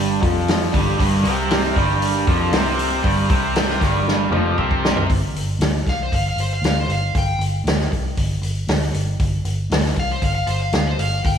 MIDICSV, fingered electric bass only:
0, 0, Header, 1, 2, 480
1, 0, Start_track
1, 0, Key_signature, -2, "minor"
1, 0, Tempo, 512383
1, 925, Time_signature, 4, 2, 24, 8
1, 10661, End_track
2, 0, Start_track
2, 0, Title_t, "Fingered electric bass"
2, 0, Program_c, 0, 33
2, 0, Note_on_c, 0, 31, 96
2, 176, Note_off_c, 0, 31, 0
2, 213, Note_on_c, 0, 29, 93
2, 655, Note_off_c, 0, 29, 0
2, 692, Note_on_c, 0, 31, 85
2, 912, Note_off_c, 0, 31, 0
2, 934, Note_on_c, 0, 31, 87
2, 1150, Note_off_c, 0, 31, 0
2, 1156, Note_on_c, 0, 36, 104
2, 1605, Note_off_c, 0, 36, 0
2, 1653, Note_on_c, 0, 31, 92
2, 2094, Note_off_c, 0, 31, 0
2, 2133, Note_on_c, 0, 29, 97
2, 2351, Note_off_c, 0, 29, 0
2, 2362, Note_on_c, 0, 36, 91
2, 2808, Note_off_c, 0, 36, 0
2, 2851, Note_on_c, 0, 31, 93
2, 3070, Note_off_c, 0, 31, 0
2, 3095, Note_on_c, 0, 36, 103
2, 3535, Note_off_c, 0, 36, 0
2, 3572, Note_on_c, 0, 31, 90
2, 4013, Note_off_c, 0, 31, 0
2, 4036, Note_on_c, 0, 29, 88
2, 4262, Note_off_c, 0, 29, 0
2, 4287, Note_on_c, 0, 36, 87
2, 4731, Note_off_c, 0, 36, 0
2, 4773, Note_on_c, 0, 31, 88
2, 4971, Note_off_c, 0, 31, 0
2, 4995, Note_on_c, 0, 31, 85
2, 5201, Note_off_c, 0, 31, 0
2, 5236, Note_on_c, 0, 38, 88
2, 5442, Note_off_c, 0, 38, 0
2, 5496, Note_on_c, 0, 36, 76
2, 5693, Note_off_c, 0, 36, 0
2, 5738, Note_on_c, 0, 31, 83
2, 5935, Note_off_c, 0, 31, 0
2, 5957, Note_on_c, 0, 31, 77
2, 6162, Note_off_c, 0, 31, 0
2, 6198, Note_on_c, 0, 38, 78
2, 6404, Note_off_c, 0, 38, 0
2, 6442, Note_on_c, 0, 31, 74
2, 6646, Note_off_c, 0, 31, 0
2, 6698, Note_on_c, 0, 31, 83
2, 6896, Note_off_c, 0, 31, 0
2, 6919, Note_on_c, 0, 31, 92
2, 7124, Note_off_c, 0, 31, 0
2, 7157, Note_on_c, 0, 38, 90
2, 7364, Note_off_c, 0, 38, 0
2, 7417, Note_on_c, 0, 36, 89
2, 7615, Note_off_c, 0, 36, 0
2, 7659, Note_on_c, 0, 31, 95
2, 7856, Note_off_c, 0, 31, 0
2, 7881, Note_on_c, 0, 31, 93
2, 8086, Note_off_c, 0, 31, 0
2, 8127, Note_on_c, 0, 38, 77
2, 8330, Note_off_c, 0, 38, 0
2, 8368, Note_on_c, 0, 31, 83
2, 8570, Note_off_c, 0, 31, 0
2, 8616, Note_on_c, 0, 31, 97
2, 8815, Note_off_c, 0, 31, 0
2, 8848, Note_on_c, 0, 31, 92
2, 9051, Note_off_c, 0, 31, 0
2, 9087, Note_on_c, 0, 38, 97
2, 9290, Note_off_c, 0, 38, 0
2, 9333, Note_on_c, 0, 36, 76
2, 9534, Note_off_c, 0, 36, 0
2, 9574, Note_on_c, 0, 31, 94
2, 9775, Note_off_c, 0, 31, 0
2, 9804, Note_on_c, 0, 31, 88
2, 10009, Note_off_c, 0, 31, 0
2, 10046, Note_on_c, 0, 38, 78
2, 10250, Note_off_c, 0, 38, 0
2, 10289, Note_on_c, 0, 31, 75
2, 10492, Note_off_c, 0, 31, 0
2, 10534, Note_on_c, 0, 31, 90
2, 10661, Note_off_c, 0, 31, 0
2, 10661, End_track
0, 0, End_of_file